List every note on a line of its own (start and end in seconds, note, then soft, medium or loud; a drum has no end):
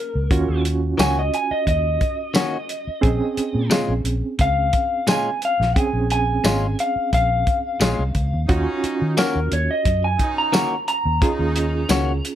0.00 0.26 A#3 medium
0.00 0.26 C#4 medium
0.00 0.26 G#4 medium
0.00 0.61 A#4 loud
0.15 0.29 C#2 medium
0.31 0.47 D#2 medium
0.31 2.99 C#4 medium
0.31 2.99 F4 medium
0.31 2.99 F#4 medium
0.31 kick loud
0.31 closed hi-hat medium
0.49 0.93 D#2 medium
0.65 closed hi-hat medium
0.98 1.29 C#2 loud
0.98 1.20 D#3 medium
0.98 1.20 A#3 medium
0.98 1.20 C#4 medium
0.98 1.21 F#4 loud
0.98 1.17 G#5 medium
0.98 snare loud
0.98 closed hi-hat medium
0.98 tambourine loud
1.19 1.33 D#5 medium
1.34 1.51 G#5 medium
1.34 closed hi-hat medium
1.51 1.67 D#5 medium
1.51 muted fingered electric bass stroke soft
1.67 1.97 D#2 loud
1.67 3.68 D#5 medium
1.67 kick medium
1.67 closed hi-hat medium
2.01 kick medium
2.01 closed hi-hat soft
2.34 2.56 D#3 medium
2.34 2.56 A#3 medium
2.34 2.57 C#4 medium
2.34 2.57 F#4 medium
2.34 snare loud
2.34 closed hi-hat medium
2.34 tambourine loud
2.69 closed hi-hat medium
2.87 muted fingered electric bass stroke soft
3.01 3.19 A#1 loud
3.01 5.71 C4 medium
3.01 5.71 C#4 medium
3.01 5.71 G#4 medium
3.01 kick loud
3.01 closed hi-hat medium
3.37 muted fingered electric bass stroke soft
3.37 closed hi-hat medium
3.54 3.69 A#2 medium
3.70 3.92 A#2 loud
3.70 3.92 G#3 loud
3.70 3.93 C#4 loud
3.70 3.93 F4 loud
3.70 snare loud
3.70 closed hi-hat medium
3.70 tambourine loud
3.88 4.03 A#1 medium
4.04 4.21 A#1 medium
4.04 closed hi-hat medium
4.39 4.70 C#2 loud
4.39 5.06 F5 loud
4.39 kick medium
4.39 closed hi-hat medium
4.73 kick medium
4.73 closed hi-hat medium
5.07 5.29 A#2 medium
5.07 5.29 G#3 medium
5.07 5.29 C#4 medium
5.07 5.29 F4 medium
5.07 5.42 G#5 medium
5.07 snare loud
5.07 closed hi-hat medium
5.07 tambourine loud
5.42 5.78 F5 medium
5.42 closed hi-hat medium
5.60 5.74 A#1 medium
5.60 snare soft
5.76 8.45 C4 medium
5.76 8.45 C#4 medium
5.76 8.45 G#4 medium
5.76 6.10 G#5 medium
5.76 kick loud
5.76 closed hi-hat medium
5.93 6.38 A#1 medium
6.10 6.77 G#5 medium
6.10 closed hi-hat medium
6.44 6.74 G#1 medium
6.44 6.65 A#2 medium
6.44 6.66 G#3 medium
6.44 6.66 C#4 medium
6.44 6.66 F4 medium
6.44 snare loud
6.44 closed hi-hat medium
6.44 tambourine loud
6.79 7.12 F5 medium
6.79 closed hi-hat medium
6.96 muted fingered electric bass stroke soft
7.13 7.43 A#1 loud
7.13 8.46 F5 medium
7.13 kick medium
7.13 closed hi-hat medium
7.47 kick medium
7.47 closed hi-hat medium
7.80 7.96 A#1 medium
7.80 8.01 A#2 medium
7.80 8.02 G#3 medium
7.80 8.02 C#4 medium
7.80 8.03 F4 medium
7.80 snare loud
7.80 closed hi-hat medium
7.80 tambourine loud
7.99 8.13 C2 medium
8.15 8.31 C#2 medium
8.15 kick medium
8.15 closed hi-hat medium
8.33 8.47 D#2 medium
8.47 8.65 D#2 medium
8.47 9.17 D#3 medium
8.47 9.16 C#4 medium
8.47 11.18 C#4 medium
8.47 9.17 D#4 medium
8.47 11.18 F4 medium
8.47 11.18 F#4 medium
8.47 kick loud
8.47 closed hi-hat medium
8.84 muted fingered electric bass stroke soft
8.84 closed hi-hat medium
9.02 9.15 D#3 medium
9.17 9.38 D#3 medium
9.17 9.39 A#3 medium
9.17 9.39 C#4 medium
9.17 9.39 F#4 medium
9.17 9.51 A#4 medium
9.17 snare loud
9.17 closed hi-hat medium
9.17 tambourine loud
9.35 9.49 D#2 medium
9.52 9.67 D#2 medium
9.52 9.70 C#5 loud
9.52 closed hi-hat medium
9.71 10.03 D#5 medium
9.85 10.16 F#2 loud
9.85 kick medium
9.85 closed hi-hat medium
10.04 10.37 G#5 medium
10.18 10.71 D#3 medium
10.18 10.71 C#4 medium
10.18 10.71 D#4 medium
10.18 kick medium
10.18 closed hi-hat medium
10.38 10.86 A#5 medium
10.53 10.74 D#3 medium
10.53 10.75 A#3 medium
10.53 10.75 C#4 medium
10.53 10.75 F#4 medium
10.53 snare loud
10.53 closed hi-hat medium
10.53 tambourine loud
10.88 12.35 A#5 medium
10.88 closed hi-hat medium
11.05 11.20 D#2 medium
11.21 11.90 D#3 medium
11.21 11.89 C#4 medium
11.21 12.35 C#4 medium
11.21 11.90 D#4 medium
11.21 12.35 F4 medium
11.21 12.35 G#4 medium
11.21 kick loud
11.21 closed hi-hat medium
11.39 11.84 D#2 medium
11.56 closed hi-hat medium
11.89 12.20 C#2 loud
11.89 12.11 D#3 medium
11.89 12.11 A#3 medium
11.89 12.12 C#4 loud
11.89 12.12 F#4 loud
11.89 snare loud
11.89 closed hi-hat medium
11.89 tambourine loud
12.25 closed hi-hat medium